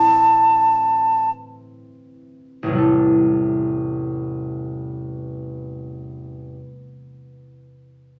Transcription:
Already playing: harp A2 E3 E4, ocarina A5
0.07 harp C4
2.63 harp A1 E2
2.69 harp C3 G3
2.75 harp E4 A4

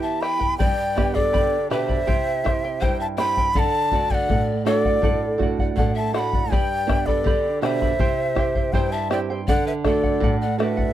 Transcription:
Already playing: nylon-string guitar E3 B3 E4 G4, charango E4 G4 B4 E5 G5
0.02 pan flute E5, quena A5
0.21 charango E4 B4 E5 G5, pan flute G5, quena B5, bombo rim
0.39 charango E4 B4 G5, bombo low
0.58 nylon-string guitar G2, charango G4 B4 D5 G5 B5, pan flute D5, quena G5, bombo low
0.96 nylon-string guitar B3 D4 G4, charango B4 D5 G5 B5, bombo rim, bombo low
1.14 pan flute A4, charango B4 D5 B5, quena D5, bombo low
1.33 nylon-string guitar D3, charango G4 B4 D5 G5 B5, bombo low
1.70 nylon-string guitar B2 D4 G4, charango B4 D5 G5 B5, pan flute B4, quena E5, bombo rim
1.84 pan flute C5
1.88 charango B4 D5 B5, bombo low
2.07 nylon-string guitar C3, charango E4 G4 C5 E5 G5, bombo low
2.44 nylon-string guitar C4 E4 G4, charango E4 C5 E5 G5, bombo rim, bombo low
2.64 charango E4 C5 G5
2.81 nylon-string guitar G2, charango E4 G4 C5 E5 G5, pan flute C5, quena G5, bombo low
2.99 pan flute E5, quena A5
3.17 nylon-string guitar C4 E4 G4, charango E4 C5 E5 G5, pan flute G5, quena B5, bombo rim
3.37 charango E4 C5 G5, bombo low
3.54 nylon-string guitar D3, charango A4 D5 F#5, pan flute D5, quena B5, bombo low
3.59 quena A5
3.92 nylon-string guitar A3 D4 F#4, charango A4 D5 F#5, bombo low
4.10 pan flute D5, charango D5 F#5, quena G5, bombo low
4.14 quena F#5
4.29 nylon-string guitar A2, charango A4 D5 F#5, bombo low
4.65 nylon-string guitar A3 D4 F#4, pan flute A4, charango A4 D5 F#5, quena C#5, bombo rim
4.78 quena D5
4.85 charango D5 F#5, bombo low
5.02 nylon-string guitar A2, charango A4 D5 F#5, bombo low
5.38 nylon-string guitar A3 D4 F#4, charango A4, bombo low
5.42 charango D5 F#5
5.59 charango D5 F#5, bombo low
5.76 nylon-string guitar A2, charango A4 D5 F#5, pan flute D5, quena F#5, bombo low
5.94 pan flute E5, quena A5
6.13 nylon-string guitar A3 D4 F#4, charango A4 D5 F#5, pan flute F#5, quena C6, bombo rim
6.19 quena B5
6.33 charango D5 F#5, bombo low
6.50 nylon-string guitar G2, charango G4 B4 D5 G5 B5, pan flute D5, quena G5, bombo low
6.87 nylon-string guitar B3 D4 G4, charango B4 D5 G5 B5, bombo rim, bombo low
7.06 pan flute A4, charango B4 D5 B5, quena D5, bombo low
7.24 nylon-string guitar D3, charango G4 B4 D5 G5 B5, bombo low
7.61 nylon-string guitar B2 D4 G4, charango B4 D5 G5 B5, pan flute C5, quena F#5, bombo rim
7.66 quena E5
7.82 charango B4 D5 B5, bombo low
7.99 nylon-string guitar C3, charango E4 G4 C5 E5 G5, bombo low
8.35 nylon-string guitar C4 E4 G4, charango E4 C5 E5 G5, bombo rim, bombo low
8.55 charango E4 C5 G5, bombo low
8.73 nylon-string guitar G2, charango E4 G4 C5 E5 G5, pan flute C5, quena G5, bombo low
8.92 pan flute E5, quena A5
9.10 nylon-string guitar C4 E4 G4, charango E4 C5 E5 G5, pan flute D5, quena G5, bombo rim
9.30 charango E4 C5 G5
9.48 nylon-string guitar D3, charango A4 D5 F#5, pan flute D5, quena F#5, bombo low
9.66 pan flute B4, quena E5
9.84 nylon-string guitar A3 D4 F#4, charango A4 D5 F#5, pan flute A4, quena D5, bombo rim, bombo low
10.03 charango D5 F#5, bombo low
10.20 nylon-string guitar A2, charango A4 D5 F#5, bombo low
10.41 pan flute D5, quena F#5
10.58 nylon-string guitar A3 D4 F#4, charango A4 D5 F#5, pan flute B4, quena E5, bombo rim
10.77 charango D5 F#5, bombo low

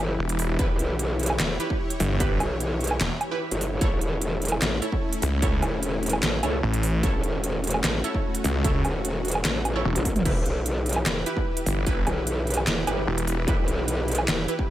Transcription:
Already playing: supersaw synth E3 E4 G4 B4
0.00 wobble bass G1
0.19 detuned saw bass E1
0.29 closed hi-hat
0.39 open hi-hat
0.59 wobble bass E1, synth stab E4 G4 B4, supersaw synth C#5, kick, closed hi-hat
0.79 wobble bass B1, closed hi-hat
0.99 closed hi-hat
1.19 closed hi-hat
1.23 closed hi-hat
1.26 closed hi-hat, low woodblock
1.40 wobble bass E1, snare, clap, closed hi-hat
1.60 synth stab E4 G4 B4, closed hi-hat
1.70 kick
1.90 closed hi-hat
2.00 detuned saw bass G1, open hi-hat
2.20 synth stab E4 G4 B4, kick, closed hi-hat
2.40 wobble bass B1, closed hi-hat, low woodblock
2.60 closed hi-hat
2.81 closed hi-hat
2.84 closed hi-hat
2.87 closed hi-hat, low woodblock
3.01 detuned saw bass E1, snare, clap, closed hi-hat
3.21 closed hi-hat, low woodblock
3.31 synth stab E4 G4 B4
3.51 wobble bass G1, closed hi-hat
3.61 open hi-hat
3.81 wobble bass A1, supersaw synth A3 C#4 E4, synth stab E4 A4 C#5, kick, closed hi-hat
4.01 wobble bass E1, closed hi-hat
4.22 closed hi-hat
4.42 closed hi-hat
4.45 closed hi-hat
4.48 closed hi-hat, low woodblock
4.62 wobble bass A1, snare, clap, closed hi-hat
4.82 synth stab E4 A4 C#5, closed hi-hat
4.92 kick
5.13 closed hi-hat
5.22 detuned saw bass C#2, open hi-hat
5.42 synth stab E4 A4 C#5, kick, closed hi-hat
5.62 wobble bass E1, closed hi-hat, low woodblock
5.83 closed hi-hat
6.03 closed hi-hat
6.06 closed hi-hat
6.09 closed hi-hat, low woodblock
6.23 wobble bass A1, snare, clap, closed hi-hat
6.43 wobble bass C#2, synth stab E4 A4 C#5, closed hi-hat, low woodblock
6.63 detuned saw bass A1
6.74 closed hi-hat
6.83 open hi-hat
7.03 wobble bass A1, synth stab E4 A4 C#5, supersaw synth F#4, kick, closed hi-hat
7.24 wobble bass E1, closed hi-hat
7.44 closed hi-hat
7.64 closed hi-hat
7.67 closed hi-hat
7.70 closed hi-hat, low woodblock
7.84 wobble bass A1, snare, clap, closed hi-hat
8.04 synth stab E4 A4 C#5, closed hi-hat
8.15 kick
8.35 closed hi-hat
8.44 detuned saw bass C#2, open hi-hat
8.64 synth stab E4 A4 C#5, kick, closed hi-hat
8.85 wobble bass E1, closed hi-hat, low woodblock
9.05 closed hi-hat
9.25 closed hi-hat
9.28 closed hi-hat
9.31 closed hi-hat, low woodblock
9.45 wobble bass A1, snare, clap, closed hi-hat
9.65 closed hi-hat, low woodblock
9.75 synth stab E4 A4 C#5
9.85 detuned saw bass E1, high tom
9.96 wobble bass A1, closed hi-hat, high tom
10.05 kick, open hi-hat
10.16 closed hi-hat, mid tom
10.25 wobble bass E1, supersaw synth E3 E4 G4 B4, synth stab E4 G4 B4, kick, closed hi-hat, crash
10.46 wobble bass B1, closed hi-hat
10.66 closed hi-hat
10.86 closed hi-hat
10.89 closed hi-hat
10.93 closed hi-hat, low woodblock
11.06 wobble bass E1, snare, clap, closed hi-hat
11.26 synth stab E4 G4 B4, closed hi-hat
11.37 kick
11.57 closed hi-hat
11.66 detuned saw bass G1, open hi-hat
11.87 synth stab E4 G4 B4, kick, closed hi-hat
12.07 wobble bass B1, closed hi-hat, low woodblock
12.27 closed hi-hat
12.47 closed hi-hat
12.50 closed hi-hat
12.54 closed hi-hat, low woodblock
12.67 wobble bass E1, snare, clap, closed hi-hat
12.87 wobble bass G1, synth stab E4 G4 B4, closed hi-hat, low woodblock
13.07 detuned saw bass E1
13.18 closed hi-hat
13.27 open hi-hat
13.48 wobble bass E1, synth stab E4 G4 B4, kick, closed hi-hat
13.68 wobble bass B1, closed hi-hat
13.88 closed hi-hat
14.08 closed hi-hat
14.12 closed hi-hat
14.15 closed hi-hat, low woodblock
14.28 wobble bass E1, snare, clap, closed hi-hat
14.48 synth stab E4 G4 B4, closed hi-hat
14.59 kick

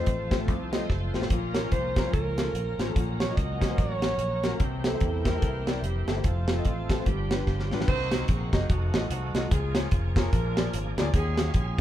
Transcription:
Already playing: tonewheel organ F3 A3 C4 A4, string section F3 A3 C4 F4, alto saxophone C5
0.00 grand piano F4 D#5
0.06 fingered electric bass A1, kick, closed hi-hat
0.31 grand piano A3 C4 F4 C5, kick, snare, closed hi-hat
0.39 grand piano A3 C4 F4 A4
0.48 fingered electric bass C2, kick, closed hi-hat
0.72 grand piano A3 C4 F4 D#5, tonewheel organ C5 D#5, snare, closed hi-hat
0.89 fingered electric bass F#1, tonewheel organ A4 C5, kick, snare
1.13 fingered electric bass A1, grand piano A3 C4 F4 C5, tonewheel organ F4 A4, snare
1.21 grand piano A3 C4 F4 C5, snare
1.30 fingered electric bass A#1, grand piano A#2, tonewheel organ F3 A#3 C#4 A4, string section A#3 C#4, kick, closed hi-hat
1.36 tonewheel organ A#4
1.54 grand piano A#3 C#4 F4 C#5, alto saxophone A#4, snare, closed hi-hat
1.64 grand piano A#3 C#4 F4 C#5
1.72 fingered electric bass C2, alto saxophone C5, kick, closed hi-hat
1.96 grand piano A#3 C#4 F4 A#4, kick, snare, closed hi-hat
2.06 grand piano A#3 C#4 F4 C#5
2.13 fingered electric bass C#2, alto saxophone A#4, kick, closed hi-hat
2.38 grand piano A#3 C#4 F4 A4, snare, closed hi-hat
2.53 fingered electric bass A#1, closed hi-hat
2.79 fingered electric bass A1, grand piano A#3 C#4 F4 C5, snare, closed hi-hat
2.88 grand piano A#3 C#4 F4 A4
2.95 fingered electric bass A#1, grand piano A#2, tonewheel organ F#3 A#3 C#4 A4, string section F#3 C#4 F#4, kick, closed hi-hat
3.00 tonewheel organ A#4
3.20 grand piano A#3 C#4 F#4 C#5, alto saxophone C#5, snare, closed hi-hat
3.29 grand piano A#3 C#4 F#4 D#5
3.37 fingered electric bass C#2, alto saxophone D#5, kick, closed hi-hat
3.61 grand piano A#3 C#4 F#4 C#5, kick, snare, closed hi-hat
3.69 grand piano A#3 C#4 F#4 C5
3.78 fingered electric bass A1, alto saxophone C#5, kick, closed hi-hat
4.02 grand piano A#3 C#4 F#4 C#5, snare, closed hi-hat
4.18 fingered electric bass A#1, closed hi-hat
4.44 grand piano A#3 C#4 F#4 A#4, snare, closed hi-hat
4.52 grand piano A#3 C#4 F#4 A#4
4.60 fingered electric bass C2, grand piano C3, tonewheel organ E3 A#3 C4 G4, string section G3 C4 E4, kick, closed hi-hat
4.84 grand piano A#3 E4 G4 C5, alto saxophone A4, snare, closed hi-hat
4.93 grand piano A#3 E4 G4 C5
5.00 fingered electric bass E2, kick, closed hi-hat
5.25 grand piano A#3 E4 G4 C5, alto saxophone A#4, kick, snare, closed hi-hat
5.35 grand piano A#3 E4 G4 A4
5.42 fingered electric bass C2, kick, closed hi-hat
5.67 grand piano A#3 E4 G4 D5, snare, closed hi-hat
5.82 fingered electric bass F1, alto saxophone G4, closed hi-hat
6.07 fingered electric bass G1, grand piano A#3 E4 G4 A4, snare, closed hi-hat
6.16 grand piano A#3 E4 G4 C5
6.24 fingered electric bass F1, string section F3 A3 F4, tonewheel organ F3 A3 C4 A4, alto saxophone F4, kick, closed hi-hat
6.48 grand piano A3 C4 F4 C5, snare, closed hi-hat
6.57 grand piano A3 C4 F4 D#5
6.65 fingered electric bass A1, alto saxophone F4, kick, closed hi-hat
6.89 grand piano A3 C4 F4 A4, kick, snare, closed hi-hat
6.99 grand piano A3 C4 F4 C5
7.05 fingered electric bass G1, grand piano G2, tonewheel organ F3 B3 D4 G4, string section G3 B3 D4 F4, alto saxophone G4, kick, closed hi-hat
7.31 grand piano G3 D4 F4 B4, snare, closed hi-hat
7.47 fingered electric bass G1, kick, snare
7.60 snare
7.70 fingered electric bass A1, grand piano G3 D4 F4 B4, snare
7.80 grand piano G3 D4 F4 B4, snare
7.87 fingered electric bass C2, grand piano C3, tonewheel organ D#3 A#3 C4 F#4, saxophone section D#4 F#4 C5, kick, crash
8.12 grand piano A#3 D#4 F#4 C5, snare, closed hi-hat
8.28 fingered electric bass A#1, saxophone section D#4 G#4, kick, closed hi-hat
8.53 fingered electric bass F#1, grand piano A#3 D#4 F#4 D#5, kick, snare, closed hi-hat
8.69 fingered electric bass F1, tonewheel organ F3 A3 D#4 F4, saxophone section A3 D#4 F#4, kick, closed hi-hat
8.74 tonewheel organ F#4
8.94 fingered electric bass A1, grand piano A3 F4 F#4 D#5, snare, closed hi-hat
9.10 fingered electric bass C2, saxophone section A3 D#4 F#4, closed hi-hat
9.34 fingered electric bass C2, grand piano A3 F4 F#4 D#5, snare, closed hi-hat
9.51 fingered electric bass C#2, grand piano C#3, tonewheel organ F3 A#3 C4 G#4, saxophone section F4 G#4, kick, closed hi-hat
9.57 tonewheel organ C#4
9.75 grand piano A#3 F4 G#4 C#5, snare, closed hi-hat
9.91 fingered electric bass F1, kick, closed hi-hat
10.16 grand piano A#3 F4 G#4 C#5, saxophone section D4 F4 A#4, kick, snare, closed hi-hat
10.33 fingered electric bass A#1, grand piano A#2, tonewheel organ F3 A#3 D4 G#4, kick, closed hi-hat
10.57 grand piano A#3 F4 G#4 D5, snare, closed hi-hat
10.73 fingered electric bass G#1, closed hi-hat
10.97 fingered electric bass D2, grand piano A#3 F4 G#4 D5, snare, closed hi-hat
11.14 fingered electric bass D#2, grand piano D#3, tonewheel organ F3 C#4 G#4 F5, saxophone section C#4 F4 G#4, kick, closed hi-hat
11.19 tonewheel organ G#3
11.38 grand piano C#4 F#4 G#4 F5, snare, closed hi-hat
11.54 fingered electric bass A#1, saxophone section C#4 F4 G#4, kick, closed hi-hat

